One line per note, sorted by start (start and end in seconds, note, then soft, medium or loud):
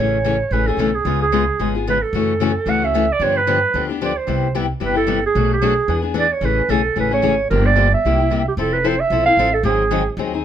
0.00 0.41 A1 medium
0.00 0.17 C#3 medium
0.00 0.17 E3 medium
0.00 0.17 A3 medium
0.00 0.17 C#4 medium
0.00 0.17 G#4 medium
0.00 0.53 C#5 medium
0.24 0.35 C#3 medium
0.24 0.35 E3 medium
0.24 0.36 A3 medium
0.24 0.36 C#4 medium
0.24 0.36 G#4 medium
0.51 0.74 A1 medium
0.51 0.67 C#3 medium
0.51 0.67 E3 medium
0.51 0.67 A3 medium
0.51 0.67 C#4 medium
0.51 0.66 G#4 medium
0.51 0.69 B4 medium
0.67 0.78 A3 soft
0.67 0.78 C#4 soft
0.67 0.78 G#4 soft
0.67 0.97 A4 medium
0.77 1.01 B1 medium
0.77 0.89 C#3 medium
0.77 0.89 E3 medium
0.77 0.89 A3 medium
0.77 0.90 C#4 medium
0.77 0.90 G#4 medium
0.95 1.21 G#4 medium
1.05 1.49 C#2 medium
1.05 1.24 C#3 medium
1.05 1.24 G#3 medium
1.05 1.25 B3 medium
1.05 1.25 F4 medium
1.05 1.25 G#4 medium
1.22 1.72 G#4 medium
1.32 1.43 C#3 medium
1.32 1.43 G#3 medium
1.32 1.43 B3 medium
1.32 1.43 F4 medium
1.32 1.43 G#4 medium
1.59 2.03 G#1 medium
1.59 1.74 C#3 medium
1.59 1.74 G#3 medium
1.59 1.74 B3 medium
1.59 1.74 F4 medium
1.59 1.74 G#4 medium
1.75 1.87 B3 soft
1.75 1.87 F4 soft
1.75 1.86 G#4 medium
1.87 1.97 C#3 medium
1.87 1.97 G#3 medium
1.87 1.97 B3 medium
1.87 1.97 F4 medium
1.87 1.97 G#4 medium
1.87 2.04 B4 medium
2.03 2.71 A4 medium
2.13 2.56 F#2 medium
2.13 2.32 C#3 medium
2.13 2.32 E3 medium
2.13 2.33 A3 medium
2.13 2.32 C#4 medium
2.13 2.33 F#4 medium
2.40 2.50 C#3 medium
2.40 2.51 E3 medium
2.40 2.51 A3 medium
2.40 2.51 C#4 medium
2.40 2.51 F#4 medium
2.66 3.09 C#2 medium
2.66 2.81 C#3 medium
2.66 2.81 E3 medium
2.66 2.82 A3 medium
2.66 2.82 C#4 medium
2.66 2.81 F#4 medium
2.66 2.86 F#5 medium
2.82 2.93 A3 soft
2.82 2.94 C#4 soft
2.82 2.94 F#4 medium
2.82 3.14 E5 medium
2.94 3.04 C#3 medium
2.94 3.05 E3 medium
2.94 3.04 A3 medium
2.94 3.05 C#4 medium
2.94 3.05 F#4 medium
3.12 3.25 D5 medium
3.20 3.63 G2 medium
3.20 3.39 D3 medium
3.20 3.39 F3 medium
3.20 3.39 B3 medium
3.20 3.39 D4 medium
3.20 3.40 G4 medium
3.20 3.38 C#5 medium
3.37 3.90 B4 medium
3.47 3.58 D3 medium
3.47 3.58 F3 medium
3.47 3.58 B3 medium
3.47 3.58 D4 medium
3.47 3.58 G4 medium
3.74 4.17 D2 medium
3.74 3.89 D3 medium
3.74 3.89 F3 medium
3.74 3.89 B3 medium
3.74 3.89 D4 medium
3.74 3.88 G4 medium
3.89 4.00 B3 soft
3.89 4.00 D4 soft
3.89 4.01 G4 medium
4.01 4.11 D3 medium
4.01 4.12 F3 medium
4.01 4.12 B3 medium
4.01 4.12 D4 medium
4.01 4.12 G4 medium
4.01 4.19 D5 medium
4.17 4.55 C5 medium
4.27 4.71 C2 medium
4.27 4.46 C3 medium
4.27 4.46 G3 medium
4.27 4.46 B3 medium
4.27 4.46 E4 medium
4.27 4.46 G4 medium
4.55 4.65 C3 medium
4.55 4.65 G3 medium
4.55 4.65 B3 medium
4.55 4.65 E4 medium
4.55 4.65 G4 medium
4.80 5.25 G1 medium
4.80 4.95 C3 medium
4.80 4.96 G3 medium
4.80 4.95 B3 medium
4.80 4.94 E4 medium
4.80 4.92 G4 medium
4.85 4.96 B4 medium
4.93 5.07 B3 soft
4.93 5.07 E4 soft
4.93 5.06 G4 soft
4.93 5.22 A4 medium
5.07 5.18 C3 medium
5.07 5.18 G3 medium
5.07 5.19 B3 medium
5.07 5.18 E4 medium
5.07 5.18 G4 medium
5.27 5.50 G#4 medium
5.35 5.79 B1 medium
5.35 5.54 B2 medium
5.35 5.54 F#3 medium
5.35 5.54 A3 medium
5.35 5.54 D4 medium
5.35 5.54 F#4 medium
5.54 6.02 G#4 medium
5.61 5.72 B2 medium
5.61 5.72 F#3 medium
5.61 5.73 A3 medium
5.61 5.73 D4 medium
5.61 5.73 F#4 medium
5.88 6.32 E2 medium
5.88 6.03 E3 medium
5.88 6.03 B3 medium
5.88 6.02 D4 medium
5.88 6.01 G#4 medium
6.02 6.13 B3 soft
6.02 6.14 D4 soft
6.02 6.14 G#4 medium
6.14 6.25 E3 medium
6.14 6.25 B3 medium
6.14 6.26 D4 medium
6.14 6.26 G#4 medium
6.19 6.34 D5 medium
6.33 6.47 C#5 medium
6.41 6.63 A1 medium
6.41 6.60 C#3 medium
6.41 6.61 E3 medium
6.41 6.61 A3 medium
6.41 6.61 C#4 medium
6.41 6.61 G#4 medium
6.45 6.72 B4 medium
6.69 6.92 B1 medium
6.69 6.80 C#3 medium
6.69 6.80 E3 medium
6.69 6.80 A3 medium
6.69 6.80 C#4 medium
6.69 6.81 G#4 medium
6.69 6.97 A4 medium
6.96 7.19 A1 medium
6.96 7.11 C#3 medium
6.96 7.11 E3 medium
6.96 7.11 A3 medium
6.96 7.10 C#4 medium
6.96 7.09 G#4 medium
7.00 7.12 B4 medium
7.11 7.22 A3 soft
7.11 7.22 C#4 soft
7.11 7.22 G#4 soft
7.11 7.49 C#5 medium
7.22 7.46 G#1 medium
7.22 7.33 C#3 medium
7.22 7.33 E3 medium
7.22 7.33 A3 medium
7.22 7.34 C#4 medium
7.22 7.34 G#4 medium
7.50 7.94 G1 medium
7.50 7.69 D3 medium
7.50 7.69 F3 medium
7.50 7.69 A#3 medium
7.50 7.70 D4 medium
7.50 7.70 G4 medium
7.50 7.68 A#4 medium
7.66 7.93 D5 medium
7.76 7.87 D3 medium
7.76 7.87 F3 medium
7.76 7.87 A#3 medium
7.76 7.87 D4 medium
7.76 7.87 G4 medium
7.94 8.43 E5 medium
8.05 8.48 C2 medium
8.05 8.19 C3 medium
8.05 8.19 G3 medium
8.05 8.20 A#3 medium
8.05 8.19 E4 medium
8.05 8.17 G4 medium
8.18 8.30 A#3 soft
8.18 8.30 E4 soft
8.18 8.30 G4 soft
8.30 8.41 C3 medium
8.30 8.41 G3 medium
8.30 8.41 A#3 medium
8.30 8.41 E4 medium
8.30 8.41 G4 medium
8.48 8.53 G4 medium
8.57 9.00 F1 medium
8.57 8.76 F3 medium
8.57 8.76 C4 medium
8.57 8.76 E4 medium
8.57 8.77 A4 medium
8.57 8.75 A4 medium
8.73 8.89 B4 medium
8.84 8.94 F3 medium
8.84 8.95 C4 medium
8.84 8.95 E4 medium
8.84 8.95 A4 medium
8.84 9.01 C5 medium
9.00 9.25 E5 loud
9.10 9.34 B1 medium
9.10 9.26 F3 medium
9.10 9.26 C4 medium
9.10 9.26 E4 medium
9.10 9.25 A4 medium
9.26 9.38 C4 soft
9.26 9.38 E4 soft
9.26 9.38 A4 medium
9.26 9.56 F5 loud
9.37 9.60 A1 medium
9.37 9.49 F3 medium
9.37 9.49 C4 medium
9.37 9.49 E4 medium
9.37 9.49 A4 loud
9.54 9.65 A4 medium
9.63 10.07 G#1 medium
9.63 9.83 D#3 medium
9.63 9.83 F#3 medium
9.63 9.83 C4 medium
9.63 9.83 D#4 medium
9.63 10.15 G#4 medium
9.63 9.83 G#4 medium
9.91 10.01 D#3 medium
9.91 10.01 F#3 medium
9.91 10.02 C4 medium
9.91 10.02 D#4 medium
9.91 10.02 G#4 medium
10.17 10.45 D#2 medium
10.17 10.32 D#3 medium
10.17 10.33 F#3 medium
10.17 10.33 C4 medium
10.17 10.33 D#4 medium
10.17 10.32 G#4 medium
10.34 10.43 C4 soft
10.34 10.44 D#4 soft
10.34 10.44 G#4 soft